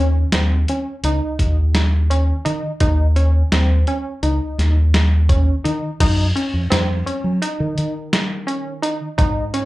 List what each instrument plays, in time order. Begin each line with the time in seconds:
Already playing: fingered electric bass D#2, synth arpeggio sound C#4
0.32 fingered electric bass D#2, synth arpeggio sound C4, snare, closed hi-hat
0.68 synth arpeggio sound C#4, closed hi-hat
1.03 fingered electric bass C#2, synth arpeggio sound D#4, closed hi-hat
1.39 fingered electric bass D#2, kick, closed hi-hat
1.75 snare, closed hi-hat
2.10 synth arpeggio sound C#4, closed hi-hat
2.45 fingered electric bass D#3, synth arpeggio sound D#4, closed hi-hat
2.80 fingered electric bass D#2, synth arpeggio sound D#4, kick, closed hi-hat
3.16 synth arpeggio sound C#4, closed hi-hat
3.52 fingered electric bass D#2, synth arpeggio sound C4, snare, closed hi-hat
3.87 synth arpeggio sound C#4, closed hi-hat
4.23 fingered electric bass C#2, synth arpeggio sound D#4, closed hi-hat
4.58 fingered electric bass D#2, snare, closed hi-hat
4.94 snare, closed hi-hat
5.29 synth arpeggio sound C#4, kick, closed hi-hat
5.64 fingered electric bass D#3, synth arpeggio sound D#4, closed hi-hat
6.00 fingered electric bass F#2, synth arpeggio sound D#4, kick, closed hi-hat, crash
6.36 synth arpeggio sound C#4, closed hi-hat
6.53 fingered electric bass F2
6.70 fingered electric bass F2, synth arpeggio sound C4, snare, closed hi-hat
7.06 synth arpeggio sound C#4, closed hi-hat
7.24 fingered electric bass F#3
7.42 synth arpeggio sound D#4, closed hi-hat
7.60 fingered electric bass D#3
7.78 fingered electric bass D#3, closed hi-hat
8.13 snare, closed hi-hat
8.47 synth arpeggio sound C#4, closed hi-hat
8.82 synth arpeggio sound D#4, closed hi-hat
9.18 fingered electric bass G#2, synth arpeggio sound D#4, kick, closed hi-hat
9.54 synth arpeggio sound C#4, closed hi-hat